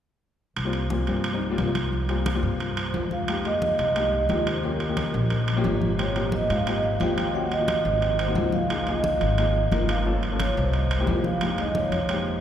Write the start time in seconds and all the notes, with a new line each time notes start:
0.56 C2, high conga, high timbale
0.65 G3 A#3 C4 F4
0.73 high conga, high timbale
0.90 G3 A#3 C4 F4, high conga, low timbale
1.07 G2 G3 A#3 C4 F4, high conga, high timbale
1.24 high conga, high timbale
1.33 G3 A#3 C4 D#4
1.41 high conga
1.50 G3 A#3 C4 F4
1.58 C2, high conga, high timbale, low timbale
1.75 high conga, high timbale
1.93 high conga
2.09 G3 A#3 C4 F4, high conga, high timbale
2.26 high conga, high timbale, low timbale
2.35 G3 A#3 C4 F4
2.43 G2, high conga
2.60 high conga, high timbale
2.77 C5, high conga, high timbale
2.94 F2, high conga, low timbale
3.11 F5, high conga
3.28 G#3 A#3 D#4 G4, high conga, high timbale
3.45 G#3 A#3 D#4 G4 D#5, high conga, high timbale
3.62 high conga, low timbale
3.78 C2, high conga, high timbale
3.95 G#3 A#3 D#4 G4, high conga, high timbale
4.13 high conga
4.29 D#2 G#3 A#3 D#4 G4, high conga, high timbale, low timbale
4.47 C5, high timbale
4.63 A#3 C#4 F4 G4 A#4, high conga
4.80 A#4, high conga, high timbale
4.89 A#3 C#4 F4 G4
4.97 high conga, high timbale, low timbale
5.14 A#1, high conga
5.30 high conga, high timbale
5.48 high conga, high timbale
5.56 A#3 C#4 F4 G4
5.64 G#1, high conga, low timbale
5.82 high conga
5.99 A#3 C4 F4 G4 C#5, high conga, high timbale
6.15 A#3 C4 F4 G4 C5, high conga, high timbale
6.32 D#5, high conga, low timbale
6.49 G#2 F5, high conga, high timbale
6.66 A#3 C4 F4 G4 D#5, high conga, high timbale
6.83 F5, high conga
7.00 D#2 A#3 C4 F4 G4 G5, high conga, high timbale, low timbale
7.18 G5, high timbale
7.34 A#3 C#4 F4 F#4 F#5, high conga
7.51 D#5, high conga, high timbale
7.59 A#3 C#4 F4 F#4
7.68 high conga, high timbale, low timbale
7.85 G#1, high conga
8.02 high conga, high timbale
8.19 C5, high conga, high timbale
8.27 A#3 C4 D#4 F#4
8.35 C#2, high conga, low timbale
8.52 F5, high conga
8.70 A#3 D#4 F4 G#4, high conga, high timbale
8.87 A#3 D#4 F4 G#4 D#5, high conga, high timbale
9.04 high conga, low timbale
9.21 G#1, high conga, high timbale
9.38 A#3 D#4 F4 G#4 D#5, high conga, high timbale
9.55 high conga
9.71 G1 A#3 D#4 F4 A#4, high conga, high timbale, low timbale
9.89 F5, high conga, high timbale
10.05 A#3 C#4 F4 A4, high conga
10.23 high conga, high timbale
10.31 A#3 C#4 F4 A4
10.40 C#5, high conga, high timbale, low timbale
10.57 C2 C5, high conga
10.73 high conga, high timbale
10.90 C5, high conga, high timbale
10.98 G#3 A#3 E4 G4
11.07 F2, high conga, low timbale
11.24 F5, high conga
11.41 G#3 A#3 D#4 G4, high conga, high timbale
11.58 G#3 A#3 D#4 G#4 D#5, high conga, high timbale
11.75 C#5, high conga, low timbale
11.92 F2, high conga, high timbale
12.09 G#3 A#3 D#4 G4 C5, high conga, high timbale
12.26 high conga